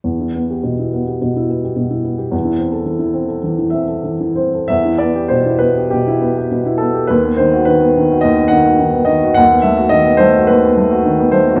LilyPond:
<<
  \new Staff \with { instrumentName = "Grand piano" } { \time 4/4 \key e \minor \tempo 4 = 105 r1 | r2 r8 e''4 c''8 | e''8 d''8 c''8 b'8 g'4. a'8 | b'8 c''8 b'4 dis''8 fis''4 dis''8 |
fis''8 e''8 dis''8 c''8 b'4. c''8 | }
  \new Staff \with { instrumentName = "Grand piano" } { \time 4/4 \key e \minor e,16 e'16 b16 g'16 b,16 e'16 b16 g'16 b,16 e'16 b16 g'16 b,16 e'16 b16 g'16 | e,16 e'16 c'16 a'16 e16 e'16 c'16 a'16 e16 e'16 c'16 a'16 e16 e'16 c'16 a'16 | e,16 e'16 b16 g'16 b,16 e'16 b16 g'16 b,16 e'16 b16 g'16 b,16 e'16 b16 g'16 | dis,16 b16 dis16 fis'16 dis16 b16 dis16 fis'16 dis,16 b16 dis16 fis'16 dis16 b16 dis16 fis'16 |
dis,16 b16 a16 fis'16 dis16 b16 a16 fis'16 dis,16 b16 a16 fis'16 dis16 b16 a16 fis'16 | }
>>